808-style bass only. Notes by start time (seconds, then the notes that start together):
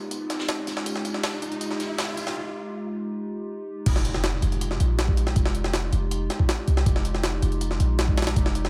Already playing: F1
0.67 C2
0.86 F1
1.42 F1
1.80 A#1
3.86 F1
4.43 F1
4.80 A#1
5.36 F1
5.93 F1
6.68 C2
6.86 F1
7.42 F1
7.80 A#1
8.36 F1